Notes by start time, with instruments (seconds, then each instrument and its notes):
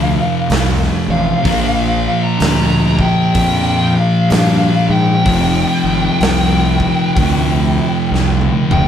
Already playing: fingered electric bass D2, distorted electric guitar F2 C3 F3, lead electric guitar F5
0.50 fingered electric bass C2, snare, open hi-hat
0.82 snare
1.08 fingered electric bass A1, lead electric guitar F5
1.43 fingered electric bass A#1, distorted electric guitar A#2 F3, kick, open hi-hat
1.47 distorted electric guitar A#3
2.24 lead electric guitar A#5
2.40 fingered electric bass D2, snare, open hi-hat
2.99 lead electric guitar G5, kick
3.35 fingered electric bass F2, kick, open hi-hat
3.96 lead electric guitar F5
4.30 fingered electric bass G2, snare, open hi-hat
4.89 fingered electric bass G#2, lead electric guitar G5
5.24 fingered electric bass F1, distorted electric guitar F2 C3 F3, kick, open hi-hat
5.84 fingered electric bass G#1
6.20 fingered electric bass C2, snare, open hi-hat
6.80 kick
7.16 fingered electric bass D2, kick, open hi-hat
8.11 fingered electric bass C2, snare
8.41 high tom
8.70 fingered electric bass D1, lead electric guitar G5, mid tom